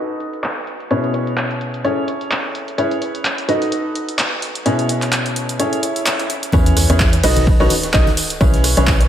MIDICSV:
0, 0, Header, 1, 6, 480
1, 0, Start_track
1, 0, Key_signature, 4, "major"
1, 0, Tempo, 468750
1, 929, Time_signature, 4, 2, 24, 8
1, 9301, End_track
2, 0, Start_track
2, 0, Title_t, "Upright piano"
2, 0, Program_c, 0, 0
2, 0, Note_on_c, 0, 63, 74
2, 0, Note_on_c, 0, 66, 67
2, 0, Note_on_c, 0, 69, 67
2, 0, Note_on_c, 0, 71, 68
2, 0, Note_on_c, 0, 75, 80
2, 903, Note_off_c, 0, 63, 0
2, 903, Note_off_c, 0, 66, 0
2, 903, Note_off_c, 0, 69, 0
2, 903, Note_off_c, 0, 71, 0
2, 903, Note_off_c, 0, 75, 0
2, 928, Note_on_c, 0, 47, 73
2, 928, Note_on_c, 0, 61, 66
2, 928, Note_on_c, 0, 64, 68
2, 928, Note_on_c, 0, 68, 68
2, 928, Note_on_c, 0, 71, 66
2, 928, Note_on_c, 0, 73, 82
2, 1863, Note_off_c, 0, 47, 0
2, 1863, Note_off_c, 0, 61, 0
2, 1863, Note_off_c, 0, 64, 0
2, 1863, Note_off_c, 0, 68, 0
2, 1863, Note_off_c, 0, 71, 0
2, 1863, Note_off_c, 0, 73, 0
2, 1888, Note_on_c, 0, 61, 75
2, 1888, Note_on_c, 0, 64, 67
2, 1888, Note_on_c, 0, 68, 68
2, 1888, Note_on_c, 0, 69, 67
2, 1888, Note_on_c, 0, 73, 83
2, 2823, Note_off_c, 0, 61, 0
2, 2823, Note_off_c, 0, 64, 0
2, 2823, Note_off_c, 0, 68, 0
2, 2823, Note_off_c, 0, 69, 0
2, 2823, Note_off_c, 0, 73, 0
2, 2847, Note_on_c, 0, 61, 73
2, 2847, Note_on_c, 0, 68, 67
2, 2847, Note_on_c, 0, 71, 69
2, 2847, Note_on_c, 0, 73, 81
2, 2848, Note_on_c, 0, 64, 68
2, 3543, Note_off_c, 0, 61, 0
2, 3543, Note_off_c, 0, 64, 0
2, 3543, Note_off_c, 0, 68, 0
2, 3543, Note_off_c, 0, 71, 0
2, 3543, Note_off_c, 0, 73, 0
2, 3568, Note_on_c, 0, 63, 76
2, 3568, Note_on_c, 0, 66, 70
2, 3569, Note_on_c, 0, 69, 68
2, 3569, Note_on_c, 0, 71, 69
2, 3569, Note_on_c, 0, 75, 86
2, 4743, Note_off_c, 0, 63, 0
2, 4743, Note_off_c, 0, 66, 0
2, 4743, Note_off_c, 0, 69, 0
2, 4743, Note_off_c, 0, 71, 0
2, 4743, Note_off_c, 0, 75, 0
2, 4768, Note_on_c, 0, 47, 76
2, 4768, Note_on_c, 0, 61, 68
2, 4768, Note_on_c, 0, 64, 68
2, 4768, Note_on_c, 0, 68, 69
2, 4768, Note_on_c, 0, 71, 68
2, 4768, Note_on_c, 0, 73, 82
2, 5703, Note_off_c, 0, 47, 0
2, 5703, Note_off_c, 0, 61, 0
2, 5703, Note_off_c, 0, 64, 0
2, 5703, Note_off_c, 0, 68, 0
2, 5703, Note_off_c, 0, 71, 0
2, 5703, Note_off_c, 0, 73, 0
2, 5728, Note_on_c, 0, 61, 77
2, 5728, Note_on_c, 0, 64, 67
2, 5728, Note_on_c, 0, 68, 67
2, 5728, Note_on_c, 0, 69, 69
2, 5728, Note_on_c, 0, 73, 83
2, 6663, Note_off_c, 0, 61, 0
2, 6663, Note_off_c, 0, 64, 0
2, 6663, Note_off_c, 0, 68, 0
2, 6663, Note_off_c, 0, 69, 0
2, 6663, Note_off_c, 0, 73, 0
2, 6689, Note_on_c, 0, 61, 86
2, 6689, Note_on_c, 0, 64, 81
2, 6689, Note_on_c, 0, 68, 79
2, 6689, Note_on_c, 0, 71, 79
2, 6689, Note_on_c, 0, 73, 96
2, 7030, Note_off_c, 0, 64, 0
2, 7031, Note_off_c, 0, 61, 0
2, 7031, Note_off_c, 0, 68, 0
2, 7031, Note_off_c, 0, 71, 0
2, 7031, Note_off_c, 0, 73, 0
2, 7062, Note_on_c, 0, 61, 85
2, 7062, Note_on_c, 0, 64, 78
2, 7062, Note_on_c, 0, 68, 78
2, 7062, Note_on_c, 0, 71, 79
2, 7062, Note_on_c, 0, 73, 97
2, 7248, Note_off_c, 0, 61, 0
2, 7248, Note_off_c, 0, 64, 0
2, 7248, Note_off_c, 0, 68, 0
2, 7248, Note_off_c, 0, 73, 0
2, 7249, Note_off_c, 0, 71, 0
2, 7408, Note_on_c, 0, 69, 91
2, 7409, Note_on_c, 0, 63, 99
2, 7409, Note_on_c, 0, 66, 94
2, 7409, Note_on_c, 0, 71, 90
2, 7409, Note_on_c, 0, 75, 109
2, 7606, Note_off_c, 0, 63, 0
2, 7606, Note_off_c, 0, 66, 0
2, 7606, Note_off_c, 0, 69, 0
2, 7606, Note_off_c, 0, 71, 0
2, 7606, Note_off_c, 0, 75, 0
2, 7783, Note_on_c, 0, 66, 94
2, 7783, Note_on_c, 0, 69, 90
2, 7783, Note_on_c, 0, 71, 92
2, 7783, Note_on_c, 0, 73, 111
2, 7784, Note_on_c, 0, 63, 101
2, 7889, Note_off_c, 0, 63, 0
2, 7889, Note_off_c, 0, 66, 0
2, 7889, Note_off_c, 0, 69, 0
2, 7889, Note_off_c, 0, 71, 0
2, 7889, Note_off_c, 0, 73, 0
2, 8128, Note_on_c, 0, 75, 101
2, 8129, Note_on_c, 0, 63, 88
2, 8129, Note_on_c, 0, 66, 82
2, 8129, Note_on_c, 0, 69, 81
2, 8129, Note_on_c, 0, 71, 81
2, 8262, Note_off_c, 0, 63, 0
2, 8262, Note_off_c, 0, 66, 0
2, 8262, Note_off_c, 0, 69, 0
2, 8262, Note_off_c, 0, 71, 0
2, 8262, Note_off_c, 0, 75, 0
2, 8608, Note_on_c, 0, 61, 87
2, 8608, Note_on_c, 0, 64, 80
2, 8608, Note_on_c, 0, 68, 82
2, 8608, Note_on_c, 0, 71, 83
2, 8608, Note_on_c, 0, 73, 97
2, 8950, Note_off_c, 0, 61, 0
2, 8950, Note_off_c, 0, 64, 0
2, 8950, Note_off_c, 0, 68, 0
2, 8950, Note_off_c, 0, 71, 0
2, 8950, Note_off_c, 0, 73, 0
2, 8982, Note_on_c, 0, 61, 87
2, 8982, Note_on_c, 0, 64, 78
2, 8982, Note_on_c, 0, 68, 81
2, 8982, Note_on_c, 0, 71, 81
2, 8982, Note_on_c, 0, 73, 96
2, 9168, Note_off_c, 0, 68, 0
2, 9168, Note_off_c, 0, 73, 0
2, 9169, Note_off_c, 0, 61, 0
2, 9169, Note_off_c, 0, 64, 0
2, 9169, Note_off_c, 0, 71, 0
2, 9301, End_track
3, 0, Start_track
3, 0, Title_t, "FM bass"
3, 0, Program_c, 1, 39
3, 6689, Note_on_c, 1, 40, 96
3, 7036, Note_off_c, 1, 40, 0
3, 7063, Note_on_c, 1, 40, 100
3, 7388, Note_off_c, 1, 40, 0
3, 7409, Note_on_c, 1, 35, 97
3, 7756, Note_off_c, 1, 35, 0
3, 7783, Note_on_c, 1, 35, 99
3, 7868, Note_off_c, 1, 35, 0
3, 8130, Note_on_c, 1, 35, 101
3, 8236, Note_off_c, 1, 35, 0
3, 8610, Note_on_c, 1, 35, 97
3, 8956, Note_off_c, 1, 35, 0
3, 8984, Note_on_c, 1, 35, 97
3, 9301, Note_off_c, 1, 35, 0
3, 9301, End_track
4, 0, Start_track
4, 0, Title_t, "Sub drop"
4, 0, Program_c, 2, 103
4, 6689, Note_on_c, 2, 60, 79
4, 8609, Note_off_c, 2, 60, 0
4, 9301, End_track
5, 0, Start_track
5, 0, Title_t, "Swell"
5, 0, Program_c, 3, 103
5, 5728, Note_on_c, 3, 60, 72
5, 6689, Note_off_c, 3, 60, 0
5, 9301, End_track
6, 0, Start_track
6, 0, Title_t, "Drums"
6, 209, Note_on_c, 9, 42, 69
6, 311, Note_off_c, 9, 42, 0
6, 342, Note_on_c, 9, 42, 48
6, 445, Note_off_c, 9, 42, 0
6, 448, Note_on_c, 9, 39, 107
6, 449, Note_on_c, 9, 42, 73
6, 551, Note_off_c, 9, 39, 0
6, 552, Note_off_c, 9, 42, 0
6, 689, Note_on_c, 9, 42, 68
6, 791, Note_off_c, 9, 42, 0
6, 822, Note_on_c, 9, 42, 48
6, 925, Note_off_c, 9, 42, 0
6, 929, Note_on_c, 9, 42, 72
6, 1031, Note_off_c, 9, 42, 0
6, 1063, Note_on_c, 9, 42, 33
6, 1165, Note_off_c, 9, 42, 0
6, 1168, Note_on_c, 9, 42, 77
6, 1271, Note_off_c, 9, 42, 0
6, 1303, Note_on_c, 9, 42, 49
6, 1406, Note_off_c, 9, 42, 0
6, 1408, Note_on_c, 9, 39, 109
6, 1409, Note_on_c, 9, 42, 75
6, 1511, Note_off_c, 9, 39, 0
6, 1512, Note_off_c, 9, 42, 0
6, 1543, Note_on_c, 9, 42, 35
6, 1646, Note_off_c, 9, 42, 0
6, 1649, Note_on_c, 9, 42, 73
6, 1752, Note_off_c, 9, 42, 0
6, 1783, Note_on_c, 9, 42, 49
6, 1885, Note_off_c, 9, 42, 0
6, 1890, Note_on_c, 9, 42, 73
6, 1992, Note_off_c, 9, 42, 0
6, 2130, Note_on_c, 9, 42, 70
6, 2233, Note_off_c, 9, 42, 0
6, 2264, Note_on_c, 9, 42, 50
6, 2366, Note_off_c, 9, 42, 0
6, 2370, Note_on_c, 9, 39, 106
6, 2371, Note_on_c, 9, 42, 76
6, 2472, Note_off_c, 9, 39, 0
6, 2473, Note_off_c, 9, 42, 0
6, 2611, Note_on_c, 9, 42, 71
6, 2713, Note_off_c, 9, 42, 0
6, 2745, Note_on_c, 9, 42, 49
6, 2848, Note_off_c, 9, 42, 0
6, 2850, Note_on_c, 9, 42, 77
6, 2953, Note_off_c, 9, 42, 0
6, 2984, Note_on_c, 9, 42, 35
6, 3086, Note_off_c, 9, 42, 0
6, 3090, Note_on_c, 9, 42, 78
6, 3192, Note_off_c, 9, 42, 0
6, 3224, Note_on_c, 9, 42, 52
6, 3326, Note_off_c, 9, 42, 0
6, 3329, Note_on_c, 9, 39, 111
6, 3330, Note_on_c, 9, 42, 79
6, 3431, Note_off_c, 9, 39, 0
6, 3432, Note_off_c, 9, 42, 0
6, 3464, Note_on_c, 9, 42, 37
6, 3567, Note_off_c, 9, 42, 0
6, 3571, Note_on_c, 9, 42, 77
6, 3673, Note_off_c, 9, 42, 0
6, 3705, Note_on_c, 9, 42, 50
6, 3808, Note_off_c, 9, 42, 0
6, 3810, Note_on_c, 9, 42, 78
6, 3913, Note_off_c, 9, 42, 0
6, 4050, Note_on_c, 9, 42, 76
6, 4152, Note_off_c, 9, 42, 0
6, 4184, Note_on_c, 9, 42, 54
6, 4286, Note_off_c, 9, 42, 0
6, 4288, Note_on_c, 9, 39, 109
6, 4289, Note_on_c, 9, 42, 76
6, 4391, Note_off_c, 9, 39, 0
6, 4392, Note_off_c, 9, 42, 0
6, 4530, Note_on_c, 9, 42, 75
6, 4632, Note_off_c, 9, 42, 0
6, 4664, Note_on_c, 9, 42, 49
6, 4766, Note_off_c, 9, 42, 0
6, 4770, Note_on_c, 9, 42, 79
6, 4872, Note_off_c, 9, 42, 0
6, 4904, Note_on_c, 9, 42, 36
6, 5007, Note_off_c, 9, 42, 0
6, 5010, Note_on_c, 9, 42, 82
6, 5113, Note_off_c, 9, 42, 0
6, 5143, Note_on_c, 9, 39, 36
6, 5144, Note_on_c, 9, 42, 53
6, 5245, Note_off_c, 9, 39, 0
6, 5246, Note_off_c, 9, 42, 0
6, 5249, Note_on_c, 9, 39, 118
6, 5250, Note_on_c, 9, 42, 82
6, 5351, Note_off_c, 9, 39, 0
6, 5352, Note_off_c, 9, 42, 0
6, 5384, Note_on_c, 9, 42, 37
6, 5487, Note_off_c, 9, 42, 0
6, 5491, Note_on_c, 9, 42, 77
6, 5593, Note_off_c, 9, 42, 0
6, 5624, Note_on_c, 9, 42, 52
6, 5727, Note_off_c, 9, 42, 0
6, 5730, Note_on_c, 9, 42, 80
6, 5832, Note_off_c, 9, 42, 0
6, 5865, Note_on_c, 9, 42, 36
6, 5967, Note_off_c, 9, 42, 0
6, 5970, Note_on_c, 9, 42, 77
6, 6073, Note_off_c, 9, 42, 0
6, 6104, Note_on_c, 9, 42, 55
6, 6206, Note_off_c, 9, 42, 0
6, 6209, Note_on_c, 9, 39, 115
6, 6210, Note_on_c, 9, 42, 82
6, 6311, Note_off_c, 9, 39, 0
6, 6313, Note_off_c, 9, 42, 0
6, 6344, Note_on_c, 9, 42, 37
6, 6446, Note_off_c, 9, 42, 0
6, 6449, Note_on_c, 9, 42, 77
6, 6552, Note_off_c, 9, 42, 0
6, 6584, Note_on_c, 9, 42, 52
6, 6680, Note_on_c, 9, 63, 92
6, 6686, Note_off_c, 9, 42, 0
6, 6686, Note_on_c, 9, 54, 50
6, 6690, Note_on_c, 9, 36, 120
6, 6690, Note_on_c, 9, 37, 66
6, 6692, Note_on_c, 9, 82, 98
6, 6783, Note_off_c, 9, 63, 0
6, 6788, Note_off_c, 9, 54, 0
6, 6792, Note_off_c, 9, 36, 0
6, 6793, Note_off_c, 9, 37, 0
6, 6795, Note_off_c, 9, 82, 0
6, 6823, Note_on_c, 9, 42, 54
6, 6925, Note_off_c, 9, 42, 0
6, 6929, Note_on_c, 9, 37, 61
6, 6929, Note_on_c, 9, 46, 111
6, 6935, Note_on_c, 9, 54, 83
6, 7031, Note_off_c, 9, 37, 0
6, 7031, Note_off_c, 9, 46, 0
6, 7038, Note_off_c, 9, 54, 0
6, 7063, Note_on_c, 9, 42, 69
6, 7063, Note_on_c, 9, 63, 74
6, 7064, Note_on_c, 9, 54, 42
6, 7165, Note_off_c, 9, 42, 0
6, 7165, Note_off_c, 9, 63, 0
6, 7166, Note_off_c, 9, 54, 0
6, 7166, Note_on_c, 9, 54, 55
6, 7167, Note_on_c, 9, 39, 127
6, 7170, Note_on_c, 9, 36, 118
6, 7174, Note_on_c, 9, 38, 122
6, 7268, Note_off_c, 9, 54, 0
6, 7270, Note_off_c, 9, 39, 0
6, 7272, Note_off_c, 9, 36, 0
6, 7277, Note_off_c, 9, 38, 0
6, 7301, Note_on_c, 9, 42, 57
6, 7403, Note_off_c, 9, 42, 0
6, 7408, Note_on_c, 9, 46, 106
6, 7408, Note_on_c, 9, 54, 95
6, 7414, Note_off_c, 9, 46, 0
6, 7414, Note_on_c, 9, 46, 88
6, 7510, Note_off_c, 9, 54, 0
6, 7517, Note_off_c, 9, 46, 0
6, 7542, Note_on_c, 9, 42, 69
6, 7542, Note_on_c, 9, 63, 95
6, 7550, Note_on_c, 9, 54, 43
6, 7644, Note_off_c, 9, 42, 0
6, 7645, Note_off_c, 9, 63, 0
6, 7648, Note_off_c, 9, 54, 0
6, 7648, Note_on_c, 9, 54, 51
6, 7650, Note_on_c, 9, 36, 119
6, 7653, Note_on_c, 9, 82, 90
6, 7750, Note_off_c, 9, 54, 0
6, 7752, Note_off_c, 9, 36, 0
6, 7755, Note_off_c, 9, 82, 0
6, 7784, Note_on_c, 9, 54, 38
6, 7884, Note_off_c, 9, 54, 0
6, 7884, Note_on_c, 9, 54, 85
6, 7888, Note_on_c, 9, 46, 105
6, 7890, Note_on_c, 9, 63, 71
6, 7986, Note_off_c, 9, 54, 0
6, 7990, Note_off_c, 9, 46, 0
6, 7993, Note_off_c, 9, 63, 0
6, 8018, Note_on_c, 9, 38, 62
6, 8022, Note_on_c, 9, 42, 72
6, 8024, Note_on_c, 9, 54, 42
6, 8120, Note_off_c, 9, 38, 0
6, 8124, Note_off_c, 9, 42, 0
6, 8125, Note_on_c, 9, 38, 124
6, 8126, Note_off_c, 9, 54, 0
6, 8127, Note_on_c, 9, 39, 126
6, 8128, Note_on_c, 9, 54, 57
6, 8130, Note_on_c, 9, 36, 124
6, 8227, Note_off_c, 9, 38, 0
6, 8229, Note_off_c, 9, 39, 0
6, 8230, Note_off_c, 9, 54, 0
6, 8232, Note_off_c, 9, 36, 0
6, 8264, Note_on_c, 9, 63, 98
6, 8265, Note_on_c, 9, 42, 48
6, 8266, Note_on_c, 9, 54, 36
6, 8367, Note_off_c, 9, 42, 0
6, 8367, Note_off_c, 9, 63, 0
6, 8368, Note_on_c, 9, 46, 101
6, 8369, Note_off_c, 9, 54, 0
6, 8374, Note_on_c, 9, 54, 100
6, 8470, Note_off_c, 9, 46, 0
6, 8476, Note_off_c, 9, 54, 0
6, 8501, Note_on_c, 9, 54, 37
6, 8502, Note_on_c, 9, 42, 68
6, 8504, Note_off_c, 9, 42, 0
6, 8504, Note_on_c, 9, 42, 41
6, 8603, Note_off_c, 9, 54, 0
6, 8605, Note_on_c, 9, 82, 89
6, 8606, Note_off_c, 9, 42, 0
6, 8608, Note_on_c, 9, 37, 63
6, 8608, Note_on_c, 9, 54, 59
6, 8609, Note_on_c, 9, 36, 126
6, 8613, Note_on_c, 9, 63, 89
6, 8707, Note_off_c, 9, 82, 0
6, 8711, Note_off_c, 9, 37, 0
6, 8711, Note_off_c, 9, 54, 0
6, 8712, Note_off_c, 9, 36, 0
6, 8715, Note_off_c, 9, 63, 0
6, 8742, Note_on_c, 9, 42, 51
6, 8750, Note_on_c, 9, 38, 46
6, 8844, Note_off_c, 9, 42, 0
6, 8848, Note_on_c, 9, 37, 62
6, 8848, Note_on_c, 9, 46, 114
6, 8850, Note_on_c, 9, 54, 99
6, 8852, Note_off_c, 9, 38, 0
6, 8950, Note_off_c, 9, 37, 0
6, 8950, Note_off_c, 9, 46, 0
6, 8952, Note_off_c, 9, 54, 0
6, 8977, Note_on_c, 9, 54, 41
6, 8979, Note_on_c, 9, 38, 58
6, 8982, Note_on_c, 9, 42, 68
6, 8987, Note_on_c, 9, 63, 72
6, 9079, Note_off_c, 9, 54, 0
6, 9081, Note_off_c, 9, 38, 0
6, 9084, Note_off_c, 9, 42, 0
6, 9087, Note_on_c, 9, 39, 126
6, 9089, Note_on_c, 9, 36, 123
6, 9090, Note_off_c, 9, 63, 0
6, 9092, Note_on_c, 9, 38, 113
6, 9098, Note_on_c, 9, 54, 55
6, 9189, Note_off_c, 9, 39, 0
6, 9192, Note_off_c, 9, 36, 0
6, 9194, Note_off_c, 9, 38, 0
6, 9200, Note_off_c, 9, 54, 0
6, 9222, Note_on_c, 9, 42, 58
6, 9301, Note_off_c, 9, 42, 0
6, 9301, End_track
0, 0, End_of_file